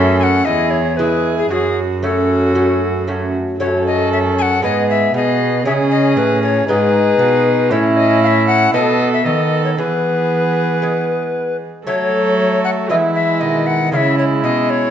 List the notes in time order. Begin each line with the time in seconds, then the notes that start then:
Already playing: F#2 A3 C#4 F#4 A4 E5
0.19 G#5
0.23 F#5
0.45 E2 E4 G#4 D#5
0.71 C#5
0.97 G#3 E4 G#4 B4
1.38 G#4
1.49 F#2 C#4 F#4 G#4
2.01 A3 C#4 F#4 A4
2.55 A3 C#4 F#4
3.07 A3 C#4 F#4
3.59 F#2 A3 C#4 F#4 A4 C#5
3.87 D#5
4.13 E5
4.38 F#5 G#5
4.62 G#2 G#3 B3 G#4 B4 D#5
4.90 E5
5.14 B2 B3 G#4 D#5
5.65 C#3 G#3 C#4 G#4 E5
5.91 D#5
6.16 A2 B4
6.43 C#5
6.67 G#2 B3 D#4 G#4 B4
7.19 B2
7.71 A2 A3 C#4 E4 C#5
7.97 D#5
8.23 F5
8.27 E5
8.47 F#5
8.73 B2 B3 A4 D#5
9.13 E5
9.25 D#3 B3 A4 D#5
9.65 C#5
9.78 E3 B3 G#4 B4
10.82 G#3 B3 G#4
11.86 F#3 A3 A4 C#5
12.64 F#5
12.89 E3 G#3 B3 E4 D#5 E5
13.15 E5
13.40 B2 D#3 D#5
13.67 F#5
13.92 C#3 G#3 C#4 E4 F5
13.96 E5
14.19 C#5
14.43 B2 D#5
14.70 C#5